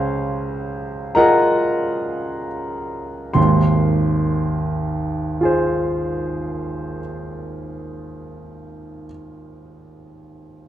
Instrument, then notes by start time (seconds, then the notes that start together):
grand piano
Already playing: C#2 C#3 C5 F5 G#5 C6
1.15 F4 G#4 A#4 D#5 F#5 A#5
3.33 G#1 D#2 C6
5.41 F4 G#4
5.45 C5